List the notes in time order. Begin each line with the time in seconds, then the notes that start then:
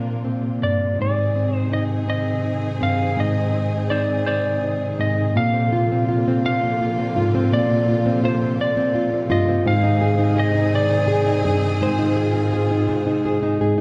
Already playing: A#2 C3 F3 A#3 C4 D4 F4 A#4
0.25 C4
0.62 G2 A#3 D5
0.98 G#2 D#3 C4 D#4 G#4 D5
1.35 C4
1.56 C5
1.71 D#4 D#5
2.08 C4 D#5
2.44 D#4
2.81 G2 C4 F5
3.17 G#2 D#5
3.53 C4
3.90 D#4 C5 D5
4.26 C4 C5 D5
4.63 D#4
4.99 G#2 C4 D#5
5.36 A#2 C3 D3 F3 A#3 F4 F5
5.54 C4
5.72 F4
5.92 C4
6.08 F4
6.28 C4
6.46 A#2 F5
6.64 C4
6.81 F4
6.99 C4
7.16 G#2 F4
7.35 C4
7.52 A#2 D5
7.70 C4
7.88 F4
8.06 C4
8.24 F4 C5
8.42 C4
8.60 A#2 D5
8.77 C4
8.95 F4
9.13 C4
9.30 G2 F4 D#5
9.48 C4
9.66 G#2 D#3 C4 D#4 G#4 F5
9.84 D#4
10.01 G#4
10.19 D#4
10.37 G#4 D#5
10.55 D#4
10.75 D5
10.90 D#4
11.08 G#4
11.27 D#4
11.44 G2 G#4
11.63 D#4
11.81 G#2 F4 C5
11.99 D#4
12.17 G#4
12.35 D#4
12.53 G#4
12.71 D#4
12.89 G#2
13.06 D#4
13.25 G#4
13.43 D#4
13.61 G#2 G#4